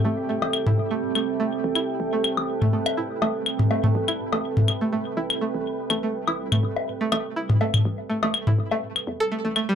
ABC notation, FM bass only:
X:1
M:4/4
L:1/16
Q:"Swing 16ths" 1/4=123
K:Am
V:1 name="FM bass" clef=bass
A,,,3 A,,,3 E,,,4 E,,3 A,,, z2 | A,,,3 A,,,3 E,,,3 z A,,, z2 A,,,3 | A,,,3 A,,,3 E,,,3 z A,,, z2 A,,,3 | A,,,3 A,,,3 E,,,3 z A,,, z2 A,,,3 |
A,,,3 A,,,3 E,,,3 z E,, z2 A,,,3 |]